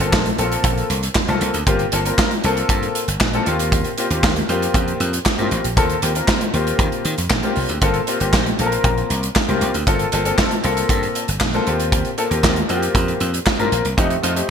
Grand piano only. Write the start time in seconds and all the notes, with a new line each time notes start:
0.00 A#3 C4 F4 A4
0.38 A#3 C4 F4 A4
1.28 A#3 C4 F4 A4
1.67 A#3 C4 F4 G4
1.92 A#3 C4 F4 A4
2.05 A#3 C4 F4 A#4
2.44 A#3 C4 F4 A4
3.34 A#3 C4 F4 A4
3.47 A#3 C4 F4 G4
3.98 A#3 C4 F4 G4
4.11 A#3 C4 F4 G4
4.49 A#3 C4 F4 G4
5.38 A#3 C4 F4 G4
5.76 A#3 C4 F4 A4
6.03 A#3 C4 F4 G4
6.15 A#3 C4 F4 A#4
6.54 A#3 C4 F4 G4
7.43 A#3 C4 F4 G4
7.81 A#3 C4 F4 A4
8.08 A#3 C4 F4 G4
8.20 A#3 C4 F4 G4
8.59 A#3 C4 F4 A4
8.66 A#4
9.48 A#3 C4 F4 G4
9.87 A#3 C4 F4 A4
10.12 A#3 C4 F4 A4
10.25 A#3 C4 F4 A4
10.63 A#3 C4 F4 A4
11.54 A#3 C4 F4 A4
11.66 A#3 C4 F4 G4
12.18 A#3 C4 F4 A4
12.30 A#3 C4 F4 G4
12.68 A#3 C4 F4 F#4
12.76 G4
13.59 A#3 C4 F4 A#4
13.97 A3 C4 D#4 G4
14.22 A3 C4 D#4 F4
14.36 A3 C4 D#4 G4